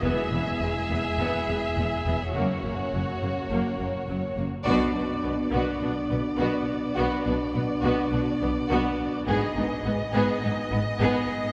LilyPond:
<<
  \new Staff \with { instrumentName = "Violin section" } { \time 4/4 \key b \major \tempo 4 = 104 e''1 | cis''2.~ cis''8 r8 | d''1~ | d''1 |
dis''1 | }
  \new Staff \with { instrumentName = "Violin section" } { \time 4/4 \key b \major gis'1 | fis'2.~ fis'8 r8 | fis'8 d'8 b8 fis'8 d'8 b8 fis'8 r8 | fis'8 d'8 b8 fis'8 d'8 b8 fis'8 r8 |
gis'8 dis'8 b8 gis'8 dis'8 b8 gis'8 r8 | }
  \new Staff \with { instrumentName = "French horn section" } { \time 4/4 \key b \major <gis e'>1 | <ais cis'>2.~ <ais cis'>8 r8 | <b d'>1~ | <b d'>1 |
<b dis'>1 | }
  \new Staff \with { instrumentName = "Viola section" } { \time 4/4 \key b \major b8 b8 gis8 b8 b8 b8 gis8 b8 | ais8 ais8 fis8 ais8 ais8 ais8 fis8 ais8 | b8 b8 b8 b8 b8 b8 b8 r8 | b8 b8 b8 b8 b8 b8 b8 r8 |
b8 b8 b8 b8 b8 b8 b8 r8 | }
  \new Staff \with { instrumentName = "Cello section" } { \clef bass \time 4/4 \key b \major e,8 e,8 e,8 e,8 e,8 e,8 e,8 e,8 | fis,8 fis,8 fis,8 fis,8 fis,8 fis,8 fis,8 fis,8 | b,8 b,8 b,8 b,8 b,8 b,8 b,8 r8 | b,8 b,8 b,8 b,8 b,8 b,8 b,8 r8 |
gis,8 gis,8 gis,8 gis,8 gis,8 gis,8 gis,8 r8 | }
  \new Staff \with { instrumentName = "Double bass section" } { \clef bass \time 4/4 \key b \major e,,8 e,,8 e,,8 e,,8 e,,8 e,,8 e,,8 e,,8 | fis,,8 fis,,8 fis,,8 fis,,8 fis,,8 fis,,8 fis,,8 fis,,8 | b,,8 b,,8 b,,8 b,,8 b,,8 b,,8 b,,8 r8 | b,,8 b,,8 b,,8 b,,8 b,,8 b,,8 b,,8 r8 |
gis,,8 gis,,8 gis,,8 gis,,8 gis,,8 gis,,8 gis,,8 r8 | }
>>